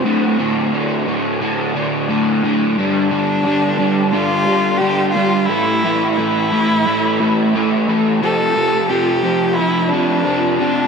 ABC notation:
X:1
M:4/4
L:1/8
Q:1/4=88
K:Dm
V:1 name="Violin"
C z6 z | D4 F2 G F | E2 E4- E z | A2 G2 E D2 D |]
V:2 name="Overdriven electric guitar" clef=bass
[D,,A,,D,] [D,,A,,D,] [D,,A,,D,] [D,,A,,D,] [D,,A,,D,] [D,,A,,D,] [D,,A,,D,] [D,,A,,D,] | [G,,D,G,] [G,,D,G,] [G,,D,G,] [G,,D,G,] [G,,D,G,] [G,,D,G,] [G,,D,G,] [G,,D,G,] | [A,,E,A,] [A,,E,A,] [A,,E,A,] [A,,E,A,] [A,,E,A,] [A,,E,A,] [A,,E,A,] [A,,E,A,] | [F,,C,F,] [F,,C,F,] [F,,C,F,] [F,,C,F,] [F,,C,F,] [F,,C,F,] [F,,C,F,] [F,,C,F,] |]